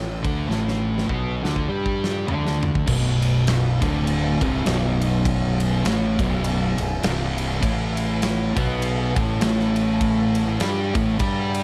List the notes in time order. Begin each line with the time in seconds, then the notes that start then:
Already playing: A1 A2
0.22 D2 D3 D4, kick, ride
0.48 A1 A2 A3, snare
0.68 snare
0.98 snare
1.08 B1 B2 B3, kick
1.43 D2 D3 D4, snare
1.56 kick
1.68 G2 G3 G4
1.86 kick
2.04 snare
2.28 D2 D3 D4, floor tom
2.47 snare
2.63 floor tom
2.75 kick
2.87 B0 B1 B2, kick, crash
3.22 ride
3.47 snare, ride
3.81 D1 D2 D3, kick, snare, ride
4.07 ride
4.41 C1 C2 C3, kick, ride
4.65 B0 B1 B2, snare, ride
5.02 ride
5.25 kick, ride
5.60 ride
5.84 A1 A2 A3, snare, ride
6.19 B0 B1 B2, kick, ride
6.44 ride
6.78 B0 B1, ride
7.03 C1 C2 C3, snare, ride
7.38 ride
7.61 A1 A2 A3, kick, ride
7.97 ride
8.22 snare, ride
8.55 B1 B2 B3, kick, ride
8.82 ride
9.15 A1 A2 A3, kick, ride
9.41 A1 A2 A3, snare, ride
9.60 snare
9.76 ride
10.01 kick, ride
10.35 ride
10.60 G2 G3 G4, snare, ride
10.95 A1 A2 A3, kick, ride
11.19 G2 G3 G4, kick, ride
11.54 ride